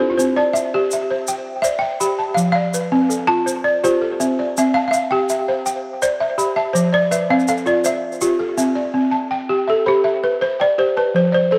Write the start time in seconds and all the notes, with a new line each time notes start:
Already playing: C4
0.00 A4 C5
0.10 F4
0.17 C4 C5, shaker
0.36 D5 A5
0.53 E5, shaker
0.74 G4
0.91 E5, shaker
1.11 C5
1.27 G5, shaker
1.62 C5 D5 E5, shaker
1.79 E5 G5
2.00 G4 B5, shaker
2.19 A5
2.34 F3 F5, shaker
2.52 D5 F5
2.74 B4, shaker
2.92 C4
3.10 A4, shaker
3.27 F4 A5
3.46 C5, shaker
3.64 D5
3.84 F4 G4 C5, shaker
4.02 A4
4.20 C4 E5, shaker
4.39 D5
4.57 C4 E5, shaker
4.74 F5 A5
4.88 E5 F5
4.93 F5, shaker
5.11 G4 G5
5.29 E5, shaker
5.48 C5
5.66 G5, shaker
6.02 C5 D5, shaker
6.20 E5
6.38 G4 B5, shaker
6.56 E5 A5
6.73 F3 C5, shaker
6.93 D5
7.11 B4 E5, shaker
7.30 C4 F5
7.40 shaker
7.48 A4 F5, shaker
7.57 shaker
7.66 F4 D5, shaker
7.84 C5 E5, shaker
8.12 shaker
8.21 F4 G4, shaker
8.39 A4
8.58 C4 E5, shaker
8.75 D5
8.94 C4
9.11 A5
9.31 G5
9.49 G4
9.68 A4 E5
9.86 G4 C5 B5
10.04 E5
10.24 B4
10.41 C5
10.60 D5 G5
10.78 G4 C5
10.97 B4 A5
11.14 F3 C5
11.32 C5 D5
11.51 A4 C5